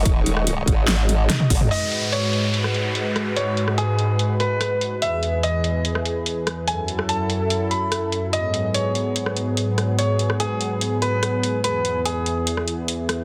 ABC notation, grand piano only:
X:1
M:4/4
L:1/8
Q:1/4=145
K:G#phr
V:1 name="Grand piano"
z8 | d2 c3 z3 | c2 G3 B3 | e2 d3 z3 |
g2 a3 b3 | d2 c3 z3 | c2 G3 B3 | B2 G3 z3 |]